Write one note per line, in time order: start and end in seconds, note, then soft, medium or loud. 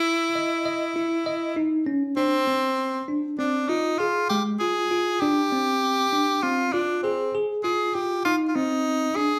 0.00 0.28 E4 medium
0.00 1.57 E4 medium
0.35 0.62 D#5 medium
0.65 0.92 D#5 medium
0.96 1.23 E4 medium
1.26 1.53 D#5 medium
1.56 1.83 D#4 medium
1.86 2.13 C#4 medium
2.16 3.04 C4 loud
2.16 2.44 D4 medium
2.47 3.01 C4 medium
3.08 3.35 D4 medium
3.39 3.66 C4 medium
3.39 3.70 D4 medium
3.68 4.00 D#4 medium
3.68 3.96 F4 medium
3.99 4.29 F4 medium
3.99 4.27 G#4 medium
4.29 4.57 G#3 medium
4.29 4.43 G4 medium
4.59 4.87 F4 medium
4.59 5.22 G#4 medium
4.91 5.18 F4 medium
5.20 5.48 D4 medium
5.20 6.44 G4 loud
5.52 6.05 C4 medium
6.13 6.39 D4 medium
6.42 6.70 C4 medium
6.42 6.74 F4 medium
6.73 7.02 D4 medium
6.73 7.00 F4 medium
7.03 7.34 C4 medium
7.03 7.30 G#4 medium
7.35 7.61 G#4 medium
7.63 7.91 F4 medium
7.63 7.96 G#4 medium
7.94 8.22 F4 medium
7.94 8.24 G4 medium
8.25 8.52 D#4 medium
8.25 8.35 F4 medium
8.48 8.57 F4 medium
8.56 9.09 C4 medium
8.56 9.17 D#4 medium
9.16 9.39 D4 medium
9.16 9.39 G#4 medium